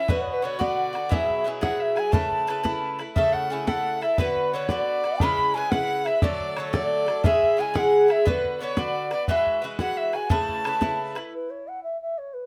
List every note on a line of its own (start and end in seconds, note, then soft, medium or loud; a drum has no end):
0.00 0.10 E5 medium
0.00 0.12 E5 loud
0.08 0.41 B2 medium
0.08 0.42 D3 medium
0.08 0.43 B3 medium
0.08 0.44 F#4 medium
0.08 0.21 B4 medium
0.08 0.23 B4 medium
0.08 bodhran medium
0.22 0.34 C#5 medium
0.28 bodhran soft
0.33 0.44 B4 medium
0.33 0.46 B4 loud
0.42 0.60 B2 medium
0.42 0.59 D3 medium
0.42 0.58 B3 medium
0.42 0.58 F#4 medium
0.42 0.62 C#5 medium
0.42 0.60 C#5 medium
0.59 0.95 B2 medium
0.59 0.94 D3 medium
0.59 0.93 B3 medium
0.59 0.92 F#4 medium
0.59 1.12 D5 medium
0.59 1.14 D5 medium
0.59 bodhran medium
0.93 1.10 D3 soft
0.93 1.11 B3 soft
0.93 1.10 F#4 medium
0.93 bodhran medium
1.09 1.43 B2 medium
1.09 1.44 F#3 medium
1.09 1.46 E4 medium
1.09 1.46 G#4 medium
1.09 1.46 E5 medium
1.09 1.46 E5 loud
1.09 bodhran medium
1.30 bodhran soft
1.44 1.62 B2 medium
1.44 1.62 F#3 medium
1.44 1.61 E4 medium
1.44 1.60 G#4 medium
1.61 1.97 B2 medium
1.61 1.97 F#3 medium
1.61 1.97 E4 medium
1.61 1.95 G#4 medium
1.61 1.81 F#5 medium
1.61 1.84 F#5 medium
1.61 bodhran loud
1.80 1.97 E5 medium
1.80 2.01 E5 loud
1.95 2.13 F#3 soft
1.95 2.12 E4 medium
1.95 2.13 G#4 soft
1.95 2.13 G#5 medium
1.95 2.16 G#5 loud
1.95 bodhran medium
2.11 2.46 C#3 medium
2.11 2.47 A3 medium
2.11 2.48 E4 medium
2.11 2.49 B4 medium
2.11 2.98 A5 medium
2.11 2.94 A5 loud
2.11 bodhran loud
2.31 bodhran soft
2.47 2.64 C#3 medium
2.47 2.63 A3 medium
2.47 2.63 E4 medium
2.47 2.62 B4 medium
2.47 bodhran medium
2.63 3.00 C#3 medium
2.63 2.99 A3 medium
2.63 2.99 E4 medium
2.63 2.97 B4 medium
2.63 bodhran medium
2.99 3.15 A3 soft
2.99 3.16 E4 medium
2.99 3.16 B4 medium
2.99 bodhran medium
3.15 3.49 C#3 medium
3.15 3.50 A3 medium
3.15 3.51 E4 medium
3.15 3.52 A4 medium
3.15 3.34 E5 medium
3.15 3.35 E5 loud
3.15 bodhran medium
3.33 3.65 F#5 medium
3.33 3.53 F#5 medium
3.33 bodhran soft
3.50 3.67 C#3 medium
3.50 3.67 A3 medium
3.50 3.66 E4 medium
3.50 3.66 A4 medium
3.50 3.70 G#5 medium
3.66 4.02 C#3 medium
3.66 4.02 A3 medium
3.66 4.02 E4 medium
3.66 4.00 A4 medium
3.66 4.04 F#5 medium
3.66 4.02 F#5 medium
3.66 bodhran medium
4.01 4.18 A3 soft
4.01 4.19 E4 soft
4.01 4.18 A4 soft
4.01 4.18 E5 medium
4.01 4.18 E5 loud
4.01 bodhran soft
4.17 4.52 D3 medium
4.17 4.53 B3 medium
4.17 4.53 F#4 medium
4.17 4.52 B4 medium
4.17 4.56 B4 loud
4.17 4.54 B4 loud
4.17 bodhran medium
4.36 bodhran soft
4.53 4.70 D3 medium
4.53 4.70 B3 medium
4.53 4.69 F#4 medium
4.53 4.68 B4 medium
4.53 4.70 C#5 medium
4.53 4.73 C#5 medium
4.68 5.05 D3 medium
4.68 5.05 B3 medium
4.68 5.04 F#4 medium
4.68 5.03 B4 medium
4.68 5.22 D5 medium
4.68 5.24 D5 loud
4.68 bodhran medium
5.04 5.22 B3 soft
5.04 5.21 F#4 medium
5.04 5.20 B4 soft
5.04 bodhran soft
5.20 5.53 C#3 medium
5.20 5.54 G#3 medium
5.20 5.55 E4 loud
5.20 5.56 B4 medium
5.20 5.55 B5 loud
5.20 5.56 B5 loud
5.20 bodhran loud
5.38 bodhran soft
5.54 5.71 C#3 medium
5.54 5.72 G#3 medium
5.54 5.71 E4 medium
5.54 5.70 B4 medium
5.54 5.72 G#5 medium
5.54 5.73 G#5 loud
5.70 6.07 C#3 medium
5.70 6.07 G#3 medium
5.70 6.06 E4 medium
5.70 6.04 B4 medium
5.70 6.07 F#5 loud
5.70 6.08 F#5 loud
5.70 bodhran medium
6.05 6.22 G#3 soft
6.05 6.23 E4 soft
6.05 6.22 B4 soft
6.05 6.22 E5 loud
6.05 6.24 E5 medium
6.05 bodhran medium
6.22 6.55 D3 medium
6.22 6.57 F#3 medium
6.22 6.57 A3 medium
6.22 6.58 A4 loud
6.22 6.59 D5 medium
6.22 6.54 D5 loud
6.22 bodhran loud
6.40 bodhran soft
6.54 6.73 D3 medium
6.54 6.75 C#5 medium
6.54 6.57 D5 medium
6.54 bodhran medium
6.58 6.73 F#3 medium
6.58 6.73 A3 medium
6.58 6.72 A4 medium
6.58 6.76 C#5 medium
6.73 7.09 D3 medium
6.73 7.08 F#3 medium
6.73 7.07 A3 medium
6.73 7.05 A4 medium
6.73 7.27 D5 loud
6.73 7.24 D5 medium
6.73 bodhran loud
7.06 7.24 F#3 soft
7.06 7.25 A3 medium
7.06 7.24 A4 soft
7.06 bodhran medium
7.24 7.56 C#3 medium
7.24 7.57 G#3 medium
7.24 7.58 E4 medium
7.24 7.59 G#4 medium
7.24 7.60 E5 medium
7.24 7.62 E5 loud
7.24 bodhran loud
7.43 bodhran soft
7.57 7.74 C#3 medium
7.57 7.74 G#3 medium
7.57 7.74 E4 medium
7.57 7.72 G#4 medium
7.57 7.77 G#5 medium
7.57 7.80 G#5 medium
7.74 8.10 C#3 medium
7.74 8.10 G#3 medium
7.74 8.09 E4 medium
7.74 8.07 G#4 medium
7.74 8.06 F#5 medium
7.74 bodhran medium
7.78 8.13 F#5 loud
8.06 8.26 E4 soft
8.06 8.26 G#4 medium
8.06 8.27 E5 medium
8.06 8.11 F#5 medium
8.06 bodhran medium
8.11 8.26 G#3 soft
8.11 8.27 E5 loud
8.25 8.59 D3 medium
8.25 8.61 B3 medium
8.25 8.61 F#4 medium
8.25 8.60 B4 medium
8.25 8.63 B4 medium
8.25 8.59 B4 loud
8.25 bodhran loud
8.45 bodhran soft
8.60 8.77 D3 medium
8.60 8.77 B3 medium
8.60 8.76 F#4 medium
8.60 8.75 B4 medium
8.60 8.80 C#5 medium
8.60 8.81 C#5 medium
8.77 9.12 D3 medium
8.77 9.13 B3 medium
8.77 9.11 F#4 medium
8.77 9.10 B4 medium
8.77 9.12 D5 medium
8.77 9.29 D5 medium
8.77 bodhran medium
9.11 9.28 B3 soft
9.11 9.28 F#4 soft
9.11 9.28 B4 medium
9.11 9.27 D5 medium
9.11 bodhran medium
9.28 9.61 E3 medium
9.28 9.62 G#3 medium
9.28 9.63 F#4 medium
9.28 9.64 B4 medium
9.28 9.60 E5 medium
9.28 9.61 E5 loud
9.28 bodhran medium
9.47 bodhran soft
9.62 9.79 E3 medium
9.62 9.79 G#3 medium
9.62 9.79 F#4 medium
9.62 9.78 B4 medium
9.79 10.17 E3 medium
9.79 10.14 G#3 medium
9.79 10.13 F#4 medium
9.79 10.11 B4 medium
9.79 9.98 F#5 medium
9.79 9.99 F#5 medium
9.79 bodhran medium
9.97 10.15 E5 medium
9.97 10.17 E5 loud
10.12 10.30 G#3 soft
10.12 10.30 F#4 soft
10.12 10.29 B4 soft
10.12 10.30 G#5 medium
10.12 10.33 G#5 loud
10.12 bodhran medium
10.30 10.63 C#3 medium
10.30 10.65 A3 medium
10.30 10.66 E4 medium
10.30 10.65 B4 loud
10.30 11.12 A5 medium
10.30 11.03 A5 loud
10.30 bodhran medium
10.49 bodhran soft
10.64 10.81 C#3 medium
10.64 10.81 A3 medium
10.64 10.81 E4 medium
10.64 10.80 B4 medium
10.64 bodhran medium
10.81 11.16 C#3 medium
10.81 11.16 A3 medium
10.81 11.16 E4 medium
10.81 11.14 B4 medium
10.81 bodhran medium
11.15 11.33 A3 medium
11.15 11.32 E4 medium
11.15 11.32 B4 medium
11.15 bodhran medium
11.35 11.52 B4 medium
11.50 11.69 C#5 medium
11.68 11.83 F#5 medium
11.83 12.00 E5 medium
12.02 12.20 E5 medium
12.18 12.35 C#5 medium
12.34 12.46 B4 medium